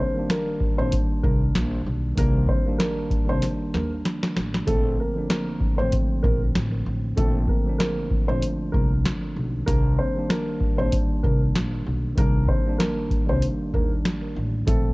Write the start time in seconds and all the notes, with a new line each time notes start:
Already playing: D#3 G3 A#3 D4
0.00 C4 C5
0.14 D#3 G3 A#3
0.19 D4
0.30 A#3 A#4, snare, closed hi-hat
0.60 kick
0.76 A#1 D#3 G3 A#3 C4 C5
0.80 D4
0.92 kick, closed hi-hat
1.23 C2 A#3 A#4, kick
1.55 A#1, snare, closed hi-hat
1.86 B1
2.15 C2 D#3 G3 A#3 A#4, kick, closed hi-hat
2.19 A#3 D4
2.48 C4 C5, kick
2.64 D#3 G3 A#3
2.69 D4
2.78 A#3 A#4, snare, closed hi-hat
3.11 kick, closed hi-hat
3.25 C2 D#3 G3 A#3
3.29 C4 D4 C5
3.42 snare, closed hi-hat
3.74 D#2 A#3 A#4, snare
4.05 snare, closed hi-hat
4.23 snare
4.36 A1, snare
4.54 snare
4.66 A#1 D3 F3 A3 A4, kick, closed hi-hat
4.70 C4
5.00 A#3 A#4
5.14 D3 F3 A#3
5.18 D4
5.30 A#3 A#4, snare, closed hi-hat
5.61 kick
5.76 A1 D3 F3 A3 C4 C5
5.80 C4
5.92 kick, closed hi-hat
6.23 A#1 A#3 A#4, kick
6.55 A1, snare, closed hi-hat
6.86 A1
7.16 A#1 D3 F3 A3 A4, kick, closed hi-hat
7.21 C4
7.48 A#3 A#4, kick
7.65 D3 F3 A#3
7.69 D4
7.78 A#3 A#4, snare, closed hi-hat
8.11 kick
8.26 A#1 D3 F3 A3 C4 C5
8.30 D4
8.42 closed hi-hat
8.72 C2 A#3 A#4, kick
9.05 snare, closed hi-hat
9.36 B1
9.65 C2 D#3 G3 A#3 A#4, kick, closed hi-hat
9.70 D4
9.99 C4 C5
10.14 D#3 G3 A#3
10.19 D4
10.30 A#3 A#4, snare, closed hi-hat
10.61 kick
10.76 A#1 D#3 G3 A#3 C4 C5
10.80 D4
10.92 kick, closed hi-hat
11.23 C2 A#3 A#4, kick
11.55 A#1, snare, closed hi-hat
11.86 B1
12.15 C2 D#3 G3 A#3 A#4, kick, closed hi-hat
12.20 D4
12.48 C4 C5, kick
12.64 D#3 G3 A#3
12.69 D4
12.78 A#3 A#4, snare, closed hi-hat
13.11 kick, closed hi-hat
13.25 C2 D#3 G3 A#3
13.29 C4 D4 C5
13.42 closed hi-hat
13.74 D#2 A#3 A#4, kick
14.05 snare, closed hi-hat
14.36 A1
14.66 A#1 D3 F3 A3 A4, kick, closed hi-hat
14.70 C4